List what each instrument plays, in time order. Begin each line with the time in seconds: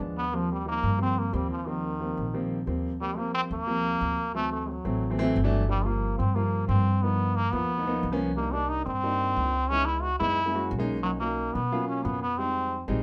0.00 upright bass D#2, grand piano F3 G#3 B3 D4
0.17 trombone B3
0.32 grand piano F3 G3 A#3 C4, trombone F3
0.52 trombone G3
0.65 grand piano F3 G3 A#3 D#4, trombone A#3
0.83 upright bass G2
0.98 grand piano F3 G3 A#3 C4
1.02 trombone C4
1.19 trombone A#3
1.32 upright bass D#2, grand piano F3 G3 A#3 C4, trombone G3
1.50 trombone F3
1.66 trombone D#3, grand piano F3 G3 A#3 C4
1.99 grand piano F3 G3 A#3 C4
2.17 upright bass A#1
2.34 grand piano F3 G3 A#3 C4
2.66 upright bass D#2, grand piano F3 G3 A#3 C4
3.01 grand piano F3 G3 A#3 C4, trombone G3
3.17 grand piano F3 G3 A#3 C4, trombone A#3
3.34 trombone C4
3.51 upright bass D#2, trombone A#3
3.67 grand piano F3 G3 A#3 C4
4.01 upright bass D2
4.33 grand piano E3 F#3 A3 C4, trombone A3
4.53 trombone A3
4.69 trombone F#3
4.84 upright bass A1, grand piano E3 F#3 A3 C4
5.10 grand piano E3 F#3 A3 C4
5.18 grand piano E3 F#3 A3 C4
5.36 upright bass G1
5.44 grand piano E3 F#3 A3 D4
5.68 grand piano F3 G3 A#3 D4, trombone G3
5.85 grand piano F3 G3 A#3 F4, trombone A#3
6.18 upright bass G2, trombone C4
6.35 grand piano F3 G3 A#3 F4, trombone A#3
6.68 upright bass G2, trombone C4
7.02 grand piano F3 B3 D#4 A#4, trombone B3
7.36 trombone A#3
7.52 upright bass D#2, grand piano F3 A#3 B3 F4, trombone B3
7.77 grand piano F3 A#3 B3 D#4
7.86 grand piano F3 A#3 B3 D#4
8.03 upright bass C2
8.12 grand piano F3 A#3 B3 C#4
8.36 grand piano G3 A#3 D4 D#4, trombone A#3
8.53 grand piano G3 A#3 D4 D#4, trombone D4
8.69 trombone D#4
8.86 upright bass G2, trombone C4
9.03 grand piano G3 A#3 D4 D#4
9.37 upright bass C#2
9.69 grand piano G#3 B3 D#4 E4, trombone C#4
9.85 trombone E4
10.02 trombone F#4
10.19 upright bass F#2, grand piano G#3 B3 D#4 E4, trombone E4
10.45 grand piano G#3 A#3 C#4 E4
10.54 grand piano G#3 A#3 C#4 F#4
10.71 upright bass B1
10.78 grand piano G#3 A#3 C#4 D#4
11.03 trombone F#3, grand piano F#3 A#3 C#4 D#4
11.20 grand piano F#3 A#3 C#4 D#4, trombone A#3
11.53 upright bass B2, trombone B3
11.72 grand piano F#3 A#3 C#4 F4
11.88 trombone C#4
12.01 upright bass F2, trombone A#3 B3
12.22 trombone B3
12.38 grand piano G3 G#3 C4 D#4, trombone C4
12.88 upright bass A#1, grand piano G3 G#3 C4 D#4